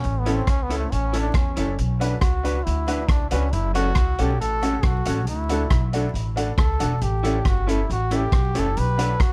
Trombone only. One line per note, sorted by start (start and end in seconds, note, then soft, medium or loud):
0.00 0.21 C#4 loud
0.20 0.37 B3 medium
0.35 0.51 C4 medium
0.49 0.64 C#4 loud
0.63 0.77 B3 medium
0.77 0.94 A3 medium
0.92 1.20 C#4 loud
1.20 1.37 D4 medium
1.36 1.79 C#4 medium
2.21 2.65 F#4 medium
2.64 3.10 E4 loud
3.08 3.30 D4 medium
3.31 3.54 C#4 medium
3.52 3.75 E4 medium
3.75 4.22 F#4 loud
4.20 4.40 G4 loud
4.41 4.87 A4 loud
4.85 5.28 F#4 loud
5.29 5.90 E4 medium
6.58 7.04 A4 medium
7.02 7.49 G4 medium
7.47 7.72 F#4 medium
7.70 7.90 E4 medium
7.92 8.17 F#4 medium
8.15 8.61 G4 loud
8.59 8.80 A4 loud
8.79 9.23 B4 loud
9.22 9.33 F#4 loud